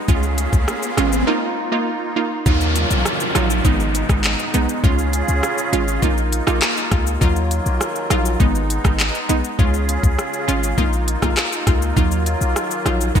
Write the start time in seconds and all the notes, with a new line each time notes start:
Already playing: riser
0.08 C#2 C#3 G#3 C#4 F4 G#4, kick, shaker
0.23 shaker
0.38 closed hi-hat, shaker
0.53 C#2, kick, shaker
0.68 cross-stick, shaker
0.83 shaker
0.97 G#1 G#3 C#4 F4, cross-stick, closed hi-hat, shaker
1.13 shaker
1.27 A#3 D#4 F4
1.72 A#3 D#4 F4
2.16 A#3 D#4 F4
2.46 D#2 D#3 F#3 A#3 D#4 F4, kick, downlifter, shaker
2.61 shaker
2.76 closed hi-hat, shaker
2.91 B1, shaker
3.05 cross-stick, shaker
3.20 shaker
3.35 A#1 F#3 D#4 F4, cross-stick, closed hi-hat, shaker
3.50 shaker
3.65 G#1 G#3 B3 D#4, kick, shaker
3.80 shaker
3.95 closed hi-hat, shaker
4.09 G#1 G#3 B3 D#4, kick, cross-stick, shaker
4.24 clap, shaker
4.39 shaker
4.54 B1 G#3 B3 D#4, closed hi-hat, shaker
4.69 shaker
4.84 C#2 C#3 G#3 C#4 F4 G#4, kick, shaker
4.98 shaker
5.13 closed hi-hat, shaker
5.28 C#2, shaker
5.43 cross-stick, shaker
5.58 shaker
5.73 G#1 G#3 C#4 F4, closed hi-hat, shaker
5.88 shaker
6.02 A#1 A#3 D#4 F4, kick, shaker
6.18 shaker
6.33 closed hi-hat, shaker
6.47 A#1 A#3 D#4 F4, cross-stick, shaker
6.62 cross-stick, clap, shaker
6.77 shaker
6.91 C#2 A#3 D#4 F4, kick, cross-stick, closed hi-hat, shaker
7.07 shaker
7.21 D#2 D#3 F#3 D#4 F4, kick, shaker
7.36 shaker
7.51 closed hi-hat, shaker
7.66 B1, shaker
7.81 cross-stick, shaker
7.96 shaker
8.10 A#1 F#3 D#4 F4, cross-stick, closed hi-hat, shaker
8.25 shaker
8.40 G#1 G#3 B3 D#4, kick, shaker
8.55 shaker
8.70 closed hi-hat, shaker
8.84 G#1 G#3 B3 D#4, kick, cross-stick, shaker
9.00 clap, shaker
9.15 shaker
9.29 B1 G#3 B3 D#4, closed hi-hat, shaker
9.44 shaker
9.59 C#2 C#3 G#3 C#4 F4 G#4, kick, shaker
9.74 shaker
9.89 closed hi-hat, shaker
10.04 C#2, kick, shaker
10.19 cross-stick, shaker
10.33 shaker
10.48 G#1 G#3 C#4 F4, closed hi-hat, shaker
10.63 shaker
10.78 A#1 A#3 D#4 F4, kick, shaker
10.93 shaker
11.08 closed hi-hat, shaker
11.22 A#1 A#3 D#4 F4, kick, cross-stick, shaker
11.37 cross-stick, clap, shaker
11.52 shaker
11.67 C#2 A#3 D#4 F4, kick, cross-stick, closed hi-hat, shaker
11.82 shaker
11.96 D#2 D#3 F#3 D#4 F4, kick, shaker
12.11 shaker
12.26 closed hi-hat, shaker
12.41 B1, shaker
12.56 cross-stick, shaker
12.71 shaker
12.86 A#1 F#3 D#4 F4, cross-stick, closed hi-hat, shaker
13.01 shaker
13.15 G#1 G#3 B3 D#4, kick, shaker